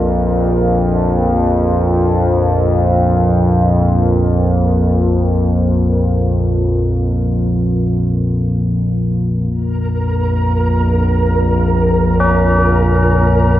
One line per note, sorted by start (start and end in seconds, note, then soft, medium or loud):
0.00 9.50 A#1 medium
0.00 9.51 F2 medium
0.00 9.50 A#3 medium
0.00 9.49 F4 medium
0.00 9.51 A#4 medium
9.50 13.60 A#1 medium
9.50 13.60 F2 medium
9.50 13.60 A#4 medium
12.20 13.60 C#4 medium